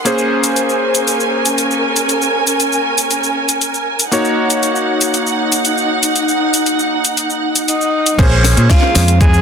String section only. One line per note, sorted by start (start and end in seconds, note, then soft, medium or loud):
0.06 4.08 C#4 medium
0.06 4.08 A#4 medium
0.06 2.07 C5 medium
0.06 4.08 G#5 medium
4.12 8.15 D#4 medium
4.12 8.15 F#5 medium